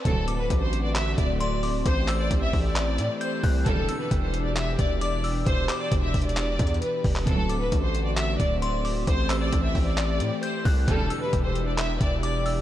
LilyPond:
<<
  \new Staff \with { instrumentName = "Synth bell" } { \time 4/4 \key a \dorian \tempo 4 = 133 r8 d'''2~ d'''8 c'''8 d'''8 | r8 e'''2~ e'''8 g'''8 fis'''8 | r8 e'''2~ e'''8 d'''8 e'''8 | r8 d'''2.~ d'''8 |
r8 d'''2~ d'''8 c'''8 d'''8 | r8 e'''2~ e'''8 g'''8 fis'''8 | r8 e'''2~ e'''8 d'''8 e'''8 | }
  \new Staff \with { instrumentName = "Violin section" } { \time 4/4 \key a \dorian a'8. b'8 c''8 d''16 e''8 d''8 d''8 r8 | c''8. d''8 e''8 d''4~ d''16 c''8 r8 | a'8. b'8 c''8 d''16 e''8 d''8 d''8 r8 | c''8. d''8 e''8 d''4~ d''16 b'8 r8 |
a'8. b'8 c''8 d''16 e''8 d''8 d''8 r8 | c''8. d''8 e''8 d''4~ d''16 c''8 r8 | a'8. b'8 c''8 d''16 e''8 d''8 d''8 r8 | }
  \new Staff \with { instrumentName = "Analog synth pad" } { \time 4/4 \key a \dorian << { <d fis'>1 | <e g'>1~ | <e g'>1~ | <e g'>1 |
<d fis'>1 | <e g'>1~ | <e g'>1 | } \\ { <a c'>1~ | <a c'>1 | <b, d'>1~ | <b, d'>1 |
<a c'>1~ | <a c'>1 | <b, d'>1 | } >> }
  \new Staff \with { instrumentName = "String section" } { \clef bass \time 4/4 \key a \dorian <d, c fis>4 r2. | r1 | <e, d g>4 r2. | r1 |
<d, c fis>4 r2. | r1 | <e, d g>4 r2. | }
  \new Staff \with { instrumentName = "808-style bass" } { \clef bass \time 4/4 \key a \dorian d,,4 a,,4. d,,4. | a,,4 a,,8 a,,4 a,16 r8. c,8 | e,,8 r8 e,,4. e,,4. | e,,8 r8 e,,8 e,,4 e,8 r8 e,,8 |
d,,4 a,,4. d,,4. | a,,4 a,,8 a,,4 a,16 r8. c,8 | e,,8 r8 e,,4. e,,4. | }
  \new DrumStaff \with { instrumentName = "Drums" } \drummode { \time 4/4 <hh bd>8 hh8 <hh bd>8 hh8 <hc hh>8 <hh bd>8 hh8 hho8 | <hh bd>8 <hc hh>8 <hh bd>8 <hho bd>8 <hc hh>8 hh8 hh8 <hho bd>8 | <hh bd>8 hh8 <hh bd>8 hh8 <hc hh>8 <hh bd>8 hh8 hho8 | <hh bd>8 <hc hh>8 \tuplet 3/2 { <hh bd>16 r16 r16 <hh hho bd>16 hh16 hh16 <hc hh>16 r16 r16 <hh bd>16 hh16 hh16 } hh8 <hho bd>16 hc16 |
<hh bd>8 hh8 <hh bd>8 hh8 <hc hh>8 <hh bd>8 hh8 hho8 | <hh bd>8 <hc hh>8 <hh bd>8 <hho bd>8 <hc hh>8 hh8 hh8 <hho bd>8 | <hh bd>8 hh8 <hh bd>8 hh8 <hc hh>8 <hh bd>8 hh8 hho8 | }
>>